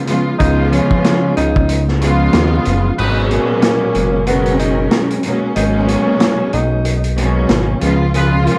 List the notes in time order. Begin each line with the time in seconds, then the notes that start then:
0.07 C#3 F3 G#3 B3 F4, closed hi-hat
0.38 C#2 C#3 F3 G#3 B3 D#4 F4, kick, closed hi-hat
0.72 C#4, closed hi-hat
0.91 kick
1.04 snare, closed hi-hat
1.37 C#2 D#4, closed hi-hat
1.56 kick
1.69 closed hi-hat
1.88 snare
2.00 C#3 F3 G#3 B3 F4, closed hi-hat
2.33 D#2, snare, closed hi-hat
2.65 F#1, closed hi-hat
2.98 G#1 A#2 B2 F#3 G#3 C#4 D#4 F#4 B4, crash
3.31 A#3, closed hi-hat
3.62 snare, closed hi-hat
3.95 F#1, closed hi-hat
4.26 B2 F#3 G#3 B3 C#4 A#4, closed hi-hat
4.46 closed hi-hat
4.59 D#4, closed hi-hat
4.91 snare, closed hi-hat
5.10 closed hi-hat
5.23 B2 F#3 G#3 A#3 C#4, closed hi-hat
5.55 G#1 B2 F#3 G#3 A#3 C#4 D#4, closed hi-hat
5.87 C#4, closed hi-hat
6.20 snare, closed hi-hat
6.53 B1 D#4, closed hi-hat
6.85 closed hi-hat
7.04 closed hi-hat
7.17 B2 F#3 G#3 A#3 C#4, closed hi-hat
7.49 G#1, snare, closed hi-hat
7.80 C#2 C#3 F3 G#3 B3 F4, closed hi-hat
8.14 B2 C#3 F3 G#3 F4 G#4 B4, closed hi-hat
8.47 A#3, closed hi-hat